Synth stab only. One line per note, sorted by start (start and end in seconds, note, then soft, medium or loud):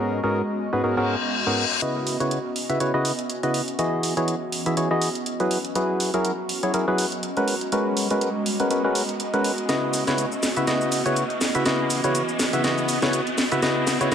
0.00 0.20 G#2 medium
0.00 0.20 B3 medium
0.00 0.20 C#4 medium
0.00 0.20 F#4 medium
0.00 0.20 G#4 medium
0.00 0.20 A#4 medium
0.24 0.42 G#2 medium
0.24 0.42 B3 medium
0.24 0.42 C#4 medium
0.24 0.42 F#4 medium
0.24 0.42 G#4 medium
0.24 0.42 A#4 medium
0.73 0.82 G#2 medium
0.73 0.82 B3 medium
0.73 0.82 C#4 medium
0.73 0.82 F#4 medium
0.73 0.82 G#4 medium
0.73 0.82 B4 medium
0.84 0.95 G#2 medium
0.84 0.95 B3 medium
0.84 0.95 C#4 medium
0.84 0.95 F#4 medium
0.84 0.95 G#4 medium
0.84 0.95 A#4 medium
0.97 1.15 G#2 medium
0.97 1.15 B3 medium
0.97 1.15 C#4 medium
0.97 1.15 F#4 medium
0.97 1.15 G#4 medium
0.97 1.15 A#4 loud
1.47 1.65 G#2 medium
1.47 1.65 B3 medium
1.47 1.65 C#4 medium
1.47 1.65 F#4 medium
1.47 1.65 G#4 medium
1.47 1.65 A#4 medium
1.82 2.17 C#3 medium
1.82 2.17 E4 medium
1.82 2.17 F#4 medium
1.82 2.17 B4 medium
1.82 2.17 D#5 medium
2.20 2.38 C#3 medium
2.20 2.38 E4 medium
2.20 2.38 F#4 medium
2.20 2.38 B4 medium
2.20 2.38 C#5 medium
2.69 2.79 C#3 medium
2.69 2.79 E4 medium
2.69 2.79 F#4 medium
2.69 2.79 B4 medium
2.69 2.79 E5 medium
2.80 2.92 C#3 medium
2.80 2.92 E4 medium
2.80 2.92 F#4 medium
2.80 2.92 B4 medium
2.80 2.92 C#5 medium
2.94 3.12 C#3 loud
2.94 3.12 E4 medium
2.94 3.12 F#4 medium
2.94 3.12 B4 medium
2.94 3.12 D#5 loud
3.43 3.61 C#3 medium
3.43 3.61 E4 medium
3.43 3.61 F#4 medium
3.43 3.61 B4 medium
3.43 3.61 D#5 medium
3.79 4.14 E3 medium
3.79 4.14 E4 medium
3.79 4.14 F#4 medium
3.79 4.14 G#4 medium
3.79 4.14 D#5 medium
4.17 4.35 E3 medium
4.17 4.35 E4 medium
4.17 4.35 F#4 medium
4.17 4.35 G#4 medium
4.17 4.35 C#5 medium
4.66 4.76 E3 medium
4.66 4.76 E4 medium
4.66 4.76 F#4 medium
4.66 4.76 G#4 medium
4.66 4.76 E5 medium
4.77 4.89 E3 medium
4.77 4.89 E4 medium
4.77 4.89 F#4 medium
4.77 4.89 G#4 medium
4.77 4.89 C#5 medium
4.91 5.09 E3 medium
4.91 5.09 E4 medium
4.91 5.09 F#4 medium
4.91 5.09 G#4 medium
4.91 5.09 D#5 loud
5.40 5.58 F#3 medium
5.40 5.58 E4 medium
5.40 5.58 F#4 medium
5.40 5.58 G#4 medium
5.40 5.58 B4 medium
5.76 6.11 F#3 medium
5.76 6.11 E4 medium
5.76 6.11 F#4 medium
5.76 6.11 G#4 medium
5.76 6.11 B4 medium
6.14 6.32 F#3 medium
6.14 6.32 E4 medium
6.14 6.32 F#4 medium
6.14 6.32 G#4 medium
6.14 6.32 A#4 medium
6.63 6.72 F#3 medium
6.63 6.72 E4 medium
6.63 6.72 F#4 medium
6.63 6.72 G#4 medium
6.63 6.72 C#5 medium
6.74 6.86 F#3 medium
6.74 6.86 E4 medium
6.74 6.86 F#4 medium
6.74 6.86 G#4 medium
6.74 6.86 A#4 medium
6.88 7.06 F#3 medium
6.88 7.06 E4 medium
6.88 7.06 F#4 medium
6.88 7.06 G#4 medium
6.88 7.06 B4 loud
7.37 7.55 G#3 medium
7.37 7.55 C#4 medium
7.37 7.55 F#4 medium
7.37 7.55 A#4 medium
7.37 7.55 B4 medium
7.72 8.07 G#3 medium
7.72 8.07 C#4 medium
7.72 8.07 F#4 medium
7.72 8.07 A#4 medium
7.72 8.07 B4 medium
8.11 8.29 G#3 medium
8.11 8.29 C#4 medium
8.11 8.29 F#4 medium
8.11 8.29 A#4 medium
8.11 8.29 B4 medium
8.60 8.69 G#3 medium
8.60 8.69 C#4 medium
8.60 8.69 F#4 medium
8.60 8.69 A#4 medium
8.60 8.69 B4 medium
8.71 8.82 G#3 medium
8.71 8.82 C#4 medium
8.71 8.82 F#4 medium
8.71 8.82 A#4 medium
8.71 8.82 B4 medium
8.84 9.02 G#3 loud
8.84 9.02 C#4 medium
8.84 9.02 F#4 medium
8.84 9.02 A#4 medium
8.84 9.02 B4 loud
9.34 9.52 G#3 medium
9.34 9.52 C#4 medium
9.34 9.52 F#4 medium
9.34 9.52 A#4 medium
9.34 9.52 B4 medium
9.69 10.04 C#3 medium
9.69 10.04 E4 medium
9.69 10.04 F#4 medium
9.69 10.04 B4 medium
9.69 10.04 D#5 medium
10.08 10.25 C#3 medium
10.08 10.25 E4 medium
10.08 10.25 F#4 medium
10.08 10.25 B4 medium
10.08 10.25 C#5 medium
10.57 10.66 C#3 medium
10.57 10.66 E4 medium
10.57 10.66 F#4 medium
10.57 10.66 B4 medium
10.57 10.66 E5 medium
10.67 11.02 C#3 medium
10.67 11.02 E4 medium
10.67 11.02 F#4 medium
10.67 11.02 B4 medium
10.67 11.02 D#5 medium
11.06 11.24 C#3 medium
11.06 11.24 E4 medium
11.06 11.24 F#4 medium
11.06 11.24 B4 medium
11.06 11.24 C#5 medium
11.55 11.64 C#3 medium
11.55 11.64 E4 medium
11.55 11.64 F#4 medium
11.55 11.64 B4 medium
11.55 11.64 E5 medium
11.66 12.01 C#3 medium
11.66 12.01 E4 medium
11.66 12.01 F#4 medium
11.66 12.01 B4 medium
11.66 12.01 D#5 medium
12.04 12.22 C#3 medium
12.04 12.22 E4 medium
12.04 12.22 F#4 medium
12.04 12.22 B4 medium
12.04 12.22 C#5 medium
12.53 12.62 C#3 medium
12.53 12.62 E4 medium
12.53 12.62 F#4 medium
12.53 12.62 B4 medium
12.53 12.62 E5 medium
12.64 12.99 C#3 medium
12.64 12.99 E4 medium
12.64 12.99 F#4 medium
12.64 12.99 B4 medium
12.64 12.99 D#5 medium
13.03 13.21 C#3 medium
13.03 13.21 E4 medium
13.03 13.21 F#4 medium
13.03 13.21 B4 medium
13.03 13.21 C#5 medium
13.52 13.61 C#3 medium
13.52 13.61 E4 medium
13.52 13.61 F#4 medium
13.52 13.61 B4 medium
13.52 13.61 E5 medium
13.63 13.98 C#3 medium
13.63 13.98 E4 medium
13.63 13.98 F#4 medium
13.63 13.98 B4 medium
13.63 13.98 D#5 medium
14.01 14.10 C#3 medium
14.01 14.10 E4 medium
14.01 14.10 F#4 medium
14.01 14.10 B4 medium
14.01 14.10 C#5 medium